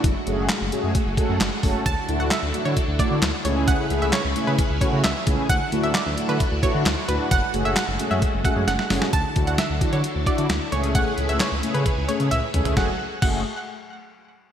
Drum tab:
CC |----------------|----------------|----------------|----------------|
HH |x-x-x-x-x-x-x-o-|x-x-x-x-x-x-x-x-|x-x-x-x-x-x-x-x-|x-x-x-x-x-x-x-x-|
CP |----x-------x---|----x-------x---|----x-------x---|----x-------x---|
SD |----o-------o---|----o-------o---|----o-------o---|----o-------o---|
T1 |----------------|----------------|----------------|----------------|
T2 |----------------|----------------|----------------|----------------|
FT |----------------|----------------|----------------|----------------|
BD |o-------o-o---o-|o-------o-o-----|o-------o-o---o-|o-------o-o-----|

CC |----------------|----------------|----------------|----x-----------|
HH |x-x-x-x-x-x-x-o-|x-xxx-xxx-xxx-xx|x-xxx-xxx-xxx-xx|----------------|
CP |----x-----------|----------------|----x-----------|----------------|
SD |----o-------oooo|----o-------o---|----o-----------|o---------------|
T1 |----------------|----------------|------------o---|----------------|
T2 |----------------|----------------|--------------o-|----------------|
FT |----------------|----------------|---------------o|----------------|
BD |o-------o-o-----|o-o---o---o-----|o-------o-------|o---o-----------|